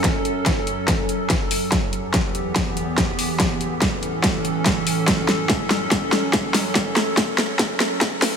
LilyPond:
<<
  \new Staff \with { instrumentName = "Ambient pad" } { \clef bass \time 4/4 \key fis \phrygian \tempo 4 = 143 << { <cis' a'>1 | <b g'>1 | <cis' a'>1~ | <cis' a'>1~ |
<cis' a'>1 | } \\ { <fis, fis>1 | <e, e>1 | <a, e>1 | <fis, fis>1~ |
<fis, fis>1 | } >> }
  \new DrumStaff \with { instrumentName = "Drums" } \drummode { \time 4/4 <hh bd sn>8 hh8 <hh bd sn>8 hh8 <hh bd sn>8 hh8 <hh bd sn>8 hho8 | <hh bd sn>8 hh8 <hh bd sn>8 hh8 <hh bd sn>8 hh8 <hh bd sn>8 hho8 | <hh bd sn>8 hh8 <hh bd sn>8 hh8 <hh bd sn>8 hh8 <hh bd sn>8 hho8 | <hh bd sn>8 <hh sn>8 <hh bd sn>8 <hh sn>8 <hh bd sn>8 <hh sn>8 <hh bd sn>8 <hho sn>8 |
<hh bd sn>8 <hh sn>8 <hh bd sn>8 <hh sn>8 <hh bd sn>8 <hh sn>8 <hh bd sn>8 <hho sn>8 | }
>>